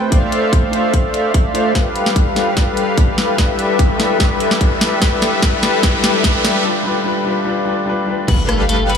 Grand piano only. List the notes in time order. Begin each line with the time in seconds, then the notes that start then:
Already playing: A3 C4 G4 B4 C5 B5
0.10 D4 F4
0.14 C5
0.71 D4 F4
0.75 C5
1.54 D4 F4 C5
1.73 G3 D4 F4
1.77 B4
2.34 G3 D4 F4
2.38 B4
2.55 G3 D4 F4
2.59 B4
3.16 G3 D4 E4 B4
3.36 G3 D4 E4 B4
3.98 G3 D4 E4
4.02 B4
4.18 G3 D4 E4 B4
4.79 G3 D4 E4 B4
5.00 G3 D4 E4
5.04 B4
5.40 G3 D4 E4
5.44 B4
5.81 G3 D4 E4
5.85 B4
6.22 G3 D4 E4
6.26 B4
6.63 G3 D4 F4 B4
6.83 G3 D4 F4
6.87 B4
7.04 G3 D4 F4
7.08 B4
7.24 G3 D4 F4 B4
7.45 G3 D4 F4 B4
7.65 G3 D4 F4
7.69 B4
7.85 G3 D4 F4
7.89 B4
8.06 G3 D4 F4
8.10 B4